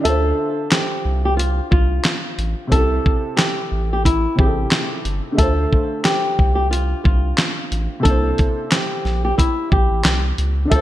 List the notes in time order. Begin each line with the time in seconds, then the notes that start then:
0.00 D3 D4 E5
0.05 D2 F4 A4 C5, closed hi-hat
0.71 G4, snare, clap, closed hi-hat
1.05 C2
1.25 G4
1.37 F4, closed hi-hat
1.71 C2 F4, kick
2.04 snare, clap, closed hi-hat
2.38 A1, closed hi-hat
2.67 C3 C4
2.72 C2 E4 G4 A4, kick, closed hi-hat
2.77 A4
3.06 kick
3.36 G4, snare, clap, closed hi-hat
3.72 A1
3.93 G4
4.05 E4, kick, closed hi-hat
4.35 A1 C3 C4 E4 G4, kick
4.40 G4 G#4
4.47 A4
4.71 snare, clap, closed hi-hat
5.05 G1, closed hi-hat
5.32 D3 A3
5.37 D2 F4 A4 E5, kick, closed hi-hat
5.42 C5
5.73 kick
6.05 G4, snare, clap, closed hi-hat
6.39 C2, kick
6.55 G4
6.71 F4, closed hi-hat
7.04 C2 F4, kick
7.38 snare, clap, closed hi-hat
7.72 A1, closed hi-hat
8.00 C3 A#3 A4
8.05 C2 D4 E4, kick, closed hi-hat
8.10 C5
8.38 kick, closed hi-hat
8.71 G4, snare, clap, closed hi-hat
9.05 A#1, snare
9.25 G4
9.38 E4, kick, closed hi-hat
9.72 A#1 G4, kick
9.91 A1
10.04 C2, snare, clap, closed hi-hat
10.38 C#2, closed hi-hat
10.65 D3 D4
10.70 D2 F4 A4 E5, kick, closed hi-hat
10.75 C5